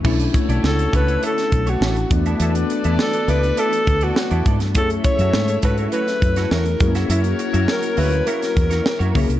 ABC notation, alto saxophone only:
X:1
M:4/4
L:1/16
Q:1/4=102
K:F#m
V:1 name="Alto saxophone"
z4 A2 B2 A3 F3 z2 | z4 A2 B2 A3 F3 z2 | A2 c4 B2 B4 ^A3 z | z4 ^A2 B2 A6 z2 |]